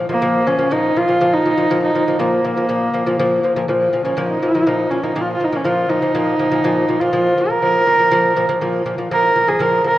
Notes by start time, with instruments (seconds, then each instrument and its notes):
0.09 lute A#2 F3, horsehead fiddle A#3
0.22 lute A#2 F3
0.47 lute A#2 F3, horsehead fiddle C#4
0.59 lute A#2 F3
0.71 lute A#2 F3, horsehead fiddle D#4
0.96 lute A#2 F3, horsehead fiddle F4
1.08 lute A#2 F3
1.21 lute A#2 F3
1.33 horsehead fiddle D#4
1.46 lute A#2 F3
1.58 lute A#2 F3
1.70 lute A#2 F3
1.83 horsehead fiddle D#4
1.95 lute A#2 F3
2.07 lute A#2 F3
2.19 lute A#2 F3, horsehead fiddle A#3
2.44 lute A#2 F3
2.57 lute A#2 F3
2.69 lute A#2 F3
2.94 lute A#2 F3
3.07 lute A#2 F3
3.20 lute A#2 F3
3.43 lute A#2 F3
3.56 lute A#2 F3
3.68 lute A#2 F3
3.93 lute A#2 F3
4.04 lute A#2 F3, horsehead fiddle C#4
4.17 lute A#2 F3
4.29 horsehead fiddle D#4
4.42 lute A#2 F3
4.54 lute A#2 F3
4.66 lute A#2 F3
4.90 lute A#2 F3, horsehead fiddle C#4
5.03 lute A#2 F3, horsehead fiddle D#4
5.16 lute A#2 F3
5.21 horsehead fiddle F4
5.33 horsehead fiddle F4
5.40 lute A#2 F3
5.44 horsehead fiddle D#4
5.52 lute A#2 F3, horsehead fiddle C#4
5.64 lute A#2 F3, horsehead fiddle F4
5.89 lute A#2 F3, horsehead fiddle D#4
6.02 lute A#2 F3
6.14 lute A#2 F3
6.39 lute A#2 F3
6.51 lute A#2 F3
6.64 lute A#2 F3
6.88 lute A#2 F3
7.00 lute A#2 F3, horsehead fiddle F4
7.13 lute A#2 F3
7.37 lute A#2 F3
7.50 lute A#2 F3, horsehead fiddle A#4
7.62 lute A#2 F3
7.87 lute A#2 F3
7.99 lute A#2 F3
8.11 lute A#2 F3
8.37 lute A#2 F3
8.49 lute A#2 F3
8.61 lute A#2 F3
8.86 lute A#2 F3
8.98 lute A#2 F3
9.12 lute A#2 F3, horsehead fiddle A#4
9.36 lute A#2 F3
9.48 lute A#2 F3, horsehead fiddle G#4
9.59 lute A#2 F3, horsehead fiddle A#4
9.84 lute A#2 F3, horsehead fiddle A#4